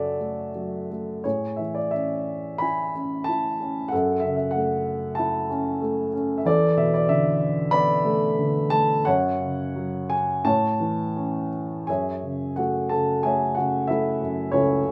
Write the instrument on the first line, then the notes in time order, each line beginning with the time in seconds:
grand piano
Already playing: F#2 C#3 F#3 A4 C#5 D5 E5 F#5 A5
0.20 A3
0.55 F#3
0.91 A3
1.24 A2 G#4 C#5
1.56 E3 E5
1.75 D5
1.91 C#4 E5
2.58 E4 G#5 B5
2.95 C#4
3.24 A5
3.29 E4
3.60 C#4
3.88 A4 F#5
3.93 F#2
4.20 E5
4.24 C#3
4.37 E5
4.51 F#5
4.56 A3
5.15 E5 A5
5.19 E4
5.50 C#4
5.82 A3
6.14 C#4
6.38 E5
6.45 E2 A4 D5
6.77 B2 E5
6.94 D5
7.08 D3 E5
7.71 B3 D5 B5
8.05 A3
8.38 D3
8.70 A3 A5
9.05 F#2 C#5 F#5
9.40 C#3
9.76 F#3
10.10 G#5
10.45 A2 C#5 A5
10.80 E3
11.16 C#4
11.87 F#2 G#4 C#5 E5 G#5
12.23 C#3
12.56 A3 F#4 F#5
12.89 C#3 A4 A5
13.23 A3 G#4 C#5 E5 G#5
13.55 C#3 F#4 F#5
13.87 A3 E4 A4 E5
14.21 F#2
14.52 C#2 C#4 E4 A4 C#5
14.84 C#3